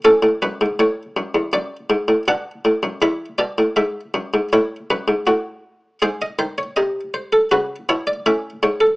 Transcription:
0.05 A2 C#4 A4
0.23 A2
0.42 F#2 B4
0.61 G#2
0.79 A2 C#5
1.17 F#2
1.35 E2
1.53 F#2 D5
1.90 G#2
2.08 A2
2.28 B2 D4 F#5
2.65 A2
2.83 F#2
3.02 E2 E4 E5
3.38 B2 D5
3.58 A2
3.76 G#2 E5
4.14 F#2
4.34 G#2
4.53 A2 E4 C#5
4.90 F#2 B4
5.08 G#2
5.27 A2 F#4
6.02 G#2 G#4 C5
6.22 D#5
6.39 D#3 C5
6.58 C#5
6.76 C3 D#5
7.14 C5
7.33 A4
7.51 C#3 F#4 B4
7.89 B2 E4 C#5
8.07 D5
8.26 A2 C#4 E5
8.63 G#2 C#5
8.80 A4

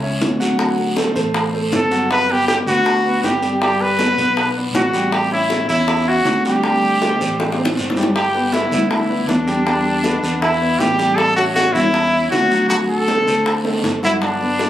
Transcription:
Already playing: C#2
0.03 C#4 C#5 E5, high conga
0.21 D2, high bongo, low bongo, high conga, short guiro
0.40 F#3 F#4 F#5, high bongo, high conga, short guiro
0.59 F#3 F#4 F#5, high bongo, long guiro
0.78 high bongo
0.97 A3 A4 C5, high bongo, high conga, short guiro
1.15 A1 A3 A4 C5, high bongo, high conga, short guiro
1.34 high bongo, high conga, long guiro
1.53 A3 A4 C5, high conga
1.72 G1 A4, high bongo, low bongo, high conga, short guiro
1.91 F#3 F#4 F#5, high bongo, high conga, short guiro
2.11 B4, high bongo, high conga, long guiro
2.28 B3 G4 B4 D5, high bongo, high conga
2.48 G4, high bongo, high conga, short guiro
2.67 D2 B3 F#4 B4 D5, high bongo, high conga, short guiro
2.86 high bongo, high conga, long guiro
3.04 B3 B4 D5, high conga
3.22 G1 G4, high bongo, low bongo, high conga, short guiro
3.42 G3 G4 G5, high bongo, short guiro
3.61 G3 G4 G5, high bongo, long guiro
3.80 B4, high bongo, high conga
3.99 B3 B4 D5, high bongo, high conga, short guiro
4.17 B1 B3 B4 D5, high bongo, high conga, short guiro
4.37 high bongo, high conga, long guiro
4.56 B3 B4 D5, high conga
4.74 A1 F#4, high bongo, low bongo, high conga, short guiro
4.93 G3 G4 G5, high bongo, high conga, short guiro
5.12 G4, high bongo, high conga, long guiro
5.31 C#4 E4 C#5 E5, high bongo, high conga
5.50 high bongo, high conga, short guiro
5.69 E2 C#4 E4 C#5 E5, high bongo, high conga, short guiro
5.88 high bongo, high conga, long guiro
6.07 C#4 F#4 C#5 E5, high conga
6.25 D2, high bongo, low bongo, high conga, short guiro
6.45 G3 G4 G5, high bongo, high conga, short guiro
6.64 G3 G4 G5, high bongo, high conga, long guiro
6.83 high bongo, high conga
7.02 C4 C5 D5, high bongo, high conga, short guiro
7.20 A1 C4 C5 D5, high bongo, high conga, short guiro
7.40 high bongo, high conga, long guiro
7.52 high bongo
7.59 C4 C5 D5, high conga
7.65 low bongo
7.77 G1, high conga, short guiro
7.90 low bongo
7.96 G3 G4 G5, low conga, short guiro
8.03 low bongo
8.15 G4, high bongo, high conga, long guiro
8.34 B3 B4 D5, high bongo, high conga
8.52 E4, high bongo, high conga, short guiro
8.71 D2 B3 B4 D5, high bongo, high conga, low conga, short guiro
8.91 E4, high bongo, high conga, low conga, long guiro
9.09 B3 B4 D5, high conga
9.28 E2 D4, high bongo, low bongo, high conga, short guiro
9.47 G3 G4 G5, high bongo, short guiro
9.65 G3 G4 G5, high bongo, long guiro
9.85 high bongo, high conga
10.04 B3 B4 D5, high bongo, high conga, short guiro
10.23 E2 B3 B4 D5, high bongo, high conga, short guiro
10.41 E4, high bongo, high conga, long guiro
10.61 B3 B4 D5, high conga
10.79 A1 G4, high bongo, low bongo, high conga, short guiro
10.98 G3 G4 G5, high bongo, high conga, short guiro
11.17 A4, high bongo, high conga, long guiro
11.36 C#4 F#4 C#5 E5, high bongo, high conga
11.55 F#4, high bongo, high conga, short guiro
11.73 E2 C#4 E4 C#5 E5, high bongo, high conga, low conga, short guiro
11.94 high bongo, high conga, long guiro
12.13 C#4 C#5 E5, high conga
12.31 D2 F#4, high bongo, low bongo, high conga, short guiro
12.51 F#3 F#4 F#5, high bongo, high conga, short guiro
12.69 F#3 F#4 F#5, high bongo, high conga, long guiro
12.88 A4, high bongo, high conga
13.08 A3 A4 C5, high bongo, high conga, short guiro
13.27 D2 A3 A4 C5, high bongo, short guiro
13.46 high bongo, high conga, long guiro
13.64 A3 A4 C5, high conga
13.83 G1, high bongo, low bongo, short guiro
14.03 F#3 E4 F#4 F#5, high bongo, low conga, short guiro
14.22 D4, high bongo, high conga, long guiro
14.40 B3 B4 D5, high bongo, high conga
14.59 high bongo, high conga, short guiro

